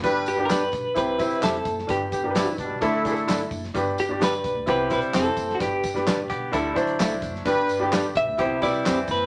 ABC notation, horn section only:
X:1
M:4/4
L:1/16
Q:1/4=129
K:G
V:1 name="Horn section"
[G,DB]3 [D,B,G]3 z4 [C,G,E]4 z2 | z2 [D,B,G]2 [E,CE]2 [B,,G,D]2 [A,E]6 z2 | z16 | z16 |
[G,DB]3 [D,B,G]3 z4 [C,G,E]4 z2 |]